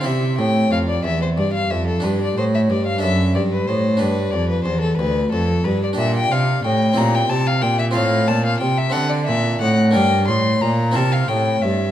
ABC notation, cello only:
X:1
M:6/8
L:1/8
Q:3/8=61
K:Gmix
V:1 name="Cello" clef=bass
C, A,, F,, E,, G,, F,, | G,, A,, G,, ^F,, G,, A,, | G,, F,, E,, D,, F,, G,, | [K:Gdor] B,, C, A,, B,, C, B,, |
A,, B,, C, D, B,, A,, | G,, A,, B,, C, A,, G,, |]